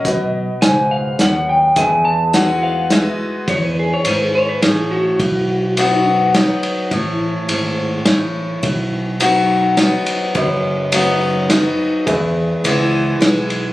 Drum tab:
RD |------|------|x-x-x-|x-x-xx|
HH |x-x-x-|x-x-x-|------|------|
SD |--o-o-|--o-o-|----o-|----o-|
BD |o-----|o-----|o-----|o-----|

RD |x-x-x-|x-x-xx|x-x-x-|x-x-xx|
HH |------|------|------|------|
SD |----o-|----o-|----o-|----o-|
BD |o-----|o-----|o-----|o-----|